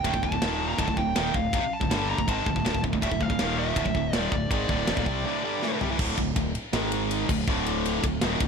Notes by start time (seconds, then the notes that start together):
Already playing: G5
0.04 D1 D2 A2, kick, ride bell
0.14 D1 D2 A2, kick
0.23 D1 D2 A2 A5, kick
0.32 D1 D2 A2, kick
0.42 D#1 D#2 A#2 D#3, snare, ride bell
0.69 A#5
0.79 D1 D2 A2 A5, kick, ride bell
0.88 D1 D2 A2, kick
0.97 D1 D2 A2 G5, kick
1.15 D#1 D#2 A#2 D#3, snare, ride bell
1.34 D1 D2 A2 F5, kick
1.53 F1 F2 C3, kick, ride bell
1.62 muted distorted electric guitar stroke, muted fingered electric bass stroke
1.73 A5
1.81 D1 D2 A2, kick
1.91 G1 G2 D3 G3, snare, ride bell
2.10 A#5
2.18 D1 D2 A2, kick
2.27 G#1 G#2 D#3 G#3 A5, kick, ride bell
2.46 D1 D2 A2, kick
2.56 D1 D2 A2, kick
2.65 D1 D2 A2, snare, ride bell
2.75 D1 D2 A2, kick
2.84 D1 D2 A2, kick
2.93 D1 D2 A2, kick
3.02 D1 D2 A2 E5, kick, ride bell
3.11 D1 D2 A2, kick
3.20 D1 D2 A2 F5, kick
3.30 D1 D2 A2, kick
3.39 D#1 D#2 A#2 D#3, snare, ride bell
3.59 E5
3.76 D1 D2 A2, kick, ride bell
3.86 D1 D2 A2, kick
3.95 D1 D2 A2, kick
4.13 D#1 D#2 A#2 D#3 D5, snare, ride bell
4.32 D1 D2 A2 D5, kick
4.51 G#1 G#2 D#3 G#3 D5, kick, ride bell
4.69 D1 D2 A2 D3, kick
4.87 F1 F2 C3, snare, ride bell
4.97 D#1 D#2 A#2, kick
5.06 C2 C3 G3 C4, kick
5.26 D2 A2 D3
5.43 G2 D3 G3
5.62 A2 E3, snare
5.72 D2 A2
5.81 C3 G3, floor tom
5.91 A2 E3
5.99 D1 D2 A2 D3, kick, crash
6.17 D1 D2 A2, kick, ride
6.36 D1 D2 A2, kick, ride
6.55 ride
6.73 G#1 G#2 D#3 G#3, snare, ride
6.92 ride
7.11 ride
7.29 D1 D2 A2, kick, crash
7.48 D1 D2 A2 D3, kick
7.66 ride
7.86 ride
8.04 D1 D2 A2, kick, ride
8.21 D#1 D#2 A#2 D#3, snare, ride
8.40 D1 D2 A2, kick, ride